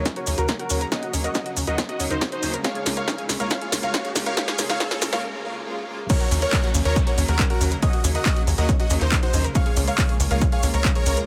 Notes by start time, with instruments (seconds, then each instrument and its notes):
Already playing: riser
0.05 synth pluck C#4, kick, snare, closed hi-hat, maracas
0.16 string section C#3 F#3 A#3 D#4, synth pluck F#4, supersaw synth A#4 C#5, grand piano C#5, closed hi-hat
0.27 analog synth bass D#2, string section C#3 F#3 A#3 D#4, synth pluck C#4, open hi-hat, maracas
0.38 analog synth bass D#2, supersaw synth F#4 A#4, grand piano A#4, synth pluck A#4, closed hi-hat, maracas
0.48 string section C#3 F#3 A#3 D#4, synth pluck C#4, kick, snare, closed hi-hat, maracas
0.59 synth pluck F#4, supersaw synth F#4 A#4, grand piano A#4, closed hi-hat
0.70 analog synth bass D#2, string section C#3 F#3 A#3 D#4, synth pluck C#4, open hi-hat, maracas
0.81 synth pluck A#4, closed hi-hat, maracas
0.92 string section C#3 F#3 A#3 D#4, synth pluck C#4, supersaw synth F#4 D#5, grand piano D#5, kick, snare, closed hi-hat, maracas
1.03 synth pluck F#4, closed hi-hat
1.13 analog synth bass D#2, string section C#3 F#3 A#3 D#4, synth pluck C#4, open hi-hat, maracas
1.24 supersaw synth F#4 D#5, synth pluck A#4, grand piano D#5, closed hi-hat, maracas
1.34 string section C#3 F#3 A#3 D#4, synth pluck C#4, kick, snare, closed hi-hat, maracas
1.46 string section C#3 F#3 A#3 D#4, synth pluck F#4, closed hi-hat
1.57 analog synth bass D#2, synth pluck C#4, open hi-hat, maracas
1.67 analog synth bass D#2, string section C#3 F#3 A#3 D#4, supersaw synth F#4 D#5, synth pluck A#4, grand piano D#5, closed hi-hat, maracas
1.78 synth pluck C#4, kick, snare, closed hi-hat, maracas
1.89 string section C#3 F#3 A#3 D#4, supersaw synth F#4 D#5, synth pluck F#4, grand piano D#5, closed hi-hat
2.00 analog synth bass D#2, string section C#3 F#3 A#3 D#4, synth pluck C#4, open hi-hat, maracas
2.11 analog synth bass D#2, supersaw synth D#4 C5, synth pluck A#4, grand piano C5, closed hi-hat, maracas
2.21 string section C#3 F#3 A#3 D#4, synth pluck C#4, kick, snare, closed hi-hat, maracas
2.32 supersaw synth D#4 C5, synth pluck F#4, grand piano C5, closed hi-hat
2.43 analog synth bass D#2, string section C#3 F#3 A#3 D#4, synth pluck C#4, open hi-hat, maracas
2.53 synth pluck A#4, closed hi-hat, maracas
2.64 string section C#3 G#3 A#3 F4, synth pluck C#4, supersaw synth C#5 F5, grand piano F5, kick, snare, closed hi-hat, maracas
2.75 synth pluck G#4, closed hi-hat
2.86 analog synth bass C#2, string section C#3 G#3 A#3 F4, synth pluck C#4, snare, open hi-hat, maracas
2.97 synth pluck A#4, supersaw synth C#5 F5, grand piano F5, closed hi-hat, maracas
3.08 string section C#3 G#3 A#3 F4, synth pluck C#4, kick, snare, closed hi-hat, maracas
3.18 string section C#3 G#3 A#3 F4, synth pluck G#4, closed hi-hat
3.29 analog synth bass C#2, synth pluck C#4, snare, open hi-hat, maracas
3.40 analog synth bass C#2, string section C#3 G#3 A#3 F4, synth pluck A#4, supersaw synth C#5 F5, grand piano F5, closed hi-hat, maracas
3.50 synth pluck C#4, supersaw synth C#5 F5, grand piano F5, kick, snare, closed hi-hat, maracas
3.61 string section C#3 G#3 A#3 F4, synth pluck G#4, closed hi-hat
3.72 analog synth bass C#2, string section C#3 G#3 A#3 F4, synth pluck C#4, snare, open hi-hat, maracas
3.83 analog synth bass C#2, synth pluck A#4, supersaw synth C#5 F5, grand piano F5, closed hi-hat, maracas
3.94 string section C#3 G#3 A#3 F4, synth pluck C#4, kick, snare, closed hi-hat, maracas
4.05 synth pluck G#4, closed hi-hat
4.15 analog synth bass C#2, string section C#3 G#3 A#3 F4, synth pluck C#4, snare, open hi-hat, maracas
4.26 synth pluck A#4, supersaw synth C#5 F5, grand piano F5, closed hi-hat, maracas
4.37 string section C#3 G#3 A#3 F4, synth pluck C#4, supersaw synth C#5 F5, grand piano F5, kick, snare, closed hi-hat, maracas
4.48 synth pluck G#4, snare, closed hi-hat
4.58 analog synth bass C#2, string section C#3 G#3 A#3 F4, synth pluck C#4, snare, open hi-hat, maracas
4.69 synth pluck A#4, supersaw synth C#5 F5, grand piano F5, snare, closed hi-hat, maracas
4.80 string section C#3 G#3 A#3 F4, synth pluck C#4, supersaw synth C#5 F5, kick, snare, closed hi-hat, maracas
4.91 string section C#3 G#3 A#3 F4, synth pluck G#4, snare, closed hi-hat
5.02 analog synth bass C#2, synth pluck C#4, snare, open hi-hat, maracas
5.12 analog synth bass C#2, string section C#3 G#3 A#3 F4, synth pluck A#4, supersaw synth C#5 F5, grand piano F5, snare, closed hi-hat, maracas
5.34 string section C#3 G#3 A#3 F4
5.45 string section C#3 G#3 A#3 F4
5.66 string section C#3 G#3 A#3 F4
5.88 string section C#3 G#3 A#3 F4
6.09 string section C#3 F#3 A#3 D#4, synth pluck C#4, supersaw synth A#4 C#5, grand piano C#5, kick, closed hi-hat, crash, downlifter, maracas
6.21 synth pluck F#4, closed hi-hat
6.31 analog synth bass D#2, string section C#3 F#3 A#3 D#4, synth pluck C#4, open hi-hat, maracas
6.41 supersaw synth A#4 C#5, synth pluck A#4, grand piano C#5, closed hi-hat, maracas
6.53 string section C#3 F#3 A#3 D#4, synth pluck C#4, kick, clap, closed hi-hat, maracas
6.64 string section C#3 F#3 A#3 D#4, synth pluck F#4, closed hi-hat
6.74 analog synth bass D#2, synth pluck C#4, open hi-hat, maracas
6.85 analog synth bass D#2, string section C#3 F#3 A#3 D#4, supersaw synth A#4 C#5, synth pluck A#4, grand piano C#5, closed hi-hat, maracas
6.96 synth pluck C#4, kick, closed hi-hat, maracas
7.07 string section C#3 F#3 A#3 D#4, synth pluck F#4, supersaw synth A#4 C#5, grand piano C#5, closed hi-hat
7.18 analog synth bass D#2, string section C#3 F#3 A#3 D#4, synth pluck C#4, open hi-hat, maracas
7.28 analog synth bass D#2, supersaw synth F#4 A#4, grand piano A#4, synth pluck A#4, closed hi-hat, maracas
7.39 string section C#3 F#3 A#3 D#4, synth pluck C#4, kick, clap, closed hi-hat, maracas
7.50 supersaw synth F#4 A#4, synth pluck F#4, grand piano A#4, closed hi-hat
7.61 analog synth bass D#2, string section C#3 F#3 A#3 D#4, synth pluck C#4, open hi-hat, maracas
7.71 synth pluck A#4, closed hi-hat, maracas
7.82 string section C#3 F#3 A#3 D#4, synth pluck C#4, supersaw synth F#4 D#5, grand piano D#5, kick, closed hi-hat, maracas
7.93 synth pluck F#4, closed hi-hat
8.04 analog synth bass D#2, string section C#3 F#3 A#3 D#4, synth pluck C#4, open hi-hat, maracas
8.15 supersaw synth F#4 D#5, synth pluck A#4, grand piano D#5, closed hi-hat, maracas
8.25 string section C#3 F#3 A#3 D#4, synth pluck C#4, kick, clap, closed hi-hat, maracas
8.36 string section C#3 F#3 A#3 D#4, synth pluck F#4, closed hi-hat
8.47 analog synth bass D#2, synth pluck C#4, open hi-hat, maracas
8.58 analog synth bass D#2, string section C#3 F#3 A#3 D#4, supersaw synth F#4 D#5, synth pluck A#4, grand piano D#5, closed hi-hat, maracas
8.69 synth pluck C#4, kick, closed hi-hat, maracas
8.79 string section C#3 F#3 A#3 D#4, synth pluck F#4, supersaw synth F#4 D#5, grand piano D#5, closed hi-hat
8.90 analog synth bass D#2, string section C#3 F#3 A#3 D#4, synth pluck C#4, open hi-hat, maracas
9.01 analog synth bass D#2, supersaw synth D#4 C5, synth pluck A#4, grand piano C5, clap, closed hi-hat, maracas
9.12 string section C#3 F#3 A#3 D#4, synth pluck C#4, kick, clap, closed hi-hat, maracas
9.23 supersaw synth D#4 C5, synth pluck F#4, grand piano C5, closed hi-hat
9.33 analog synth bass D#2, string section C#3 F#3 A#3 D#4, synth pluck C#4, open hi-hat, maracas
9.44 synth pluck A#4, closed hi-hat, maracas
9.55 string section C#3 G#3 A#3 F4, synth pluck C#4, supersaw synth C#5 F5, grand piano F5, kick, closed hi-hat, maracas
9.66 synth pluck G#4, closed hi-hat
9.76 analog synth bass C#2, string section C#3 G#3 A#3 F4, synth pluck C#4, open hi-hat, maracas
9.88 synth pluck A#4, supersaw synth C#5 F5, grand piano F5, closed hi-hat, maracas
9.98 string section C#3 G#3 A#3 F4, synth pluck C#4, kick, clap, closed hi-hat, maracas
10.09 string section C#3 G#3 A#3 F4, synth pluck G#4, closed hi-hat
10.20 analog synth bass C#2, synth pluck C#4, open hi-hat, maracas
10.31 analog synth bass C#2, string section C#3 G#3 A#3 F4, synth pluck A#4, supersaw synth C#5 F5, grand piano F5, closed hi-hat, maracas
10.41 synth pluck C#4, kick, closed hi-hat, maracas
10.52 string section C#3 G#3 A#3 F4, synth pluck G#4, supersaw synth C#5 F5, grand piano F5, closed hi-hat
10.63 analog synth bass C#2, string section C#3 G#3 A#3 F4, synth pluck C#4, open hi-hat, maracas
10.74 analog synth bass C#2, synth pluck A#4, supersaw synth A#4 C#5, grand piano C#5, closed hi-hat, maracas
10.85 string section C#3 G#3 A#3 F4, synth pluck C#4, kick, clap, closed hi-hat, maracas
10.95 synth pluck G#4, supersaw synth A#4 C#5, grand piano C#5, closed hi-hat
11.06 analog synth bass C#2, string section C#3 G#3 A#3 F4, synth pluck C#4, open hi-hat, maracas
11.17 synth pluck A#4, closed hi-hat, maracas